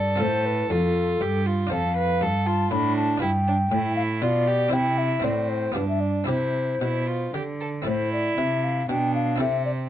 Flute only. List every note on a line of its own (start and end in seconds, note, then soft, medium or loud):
0.00 0.21 D5 medium
0.21 0.48 C5 medium
0.46 0.70 B4 medium
0.71 1.43 A4 medium
1.72 2.48 F5 medium
2.46 2.71 A5 medium
2.71 2.96 B5 medium
2.96 3.21 A5 medium
3.21 3.95 G5 medium
3.96 4.02 F5 medium
4.22 4.75 D5 medium
4.73 5.00 G5 medium
4.98 5.25 E5 medium
5.24 5.50 D5 medium
5.49 5.74 C5 medium
5.75 5.88 B4 medium
5.89 6.02 E5 medium
6.00 6.27 D5 soft
6.27 7.31 C5 medium
7.86 8.10 C5 medium
8.13 8.40 D5 medium
8.38 8.66 E5 medium
8.64 8.89 F5 medium
8.90 9.14 G5 medium
9.15 9.40 F5 medium
9.40 9.65 E5 medium
9.65 9.71 D5 medium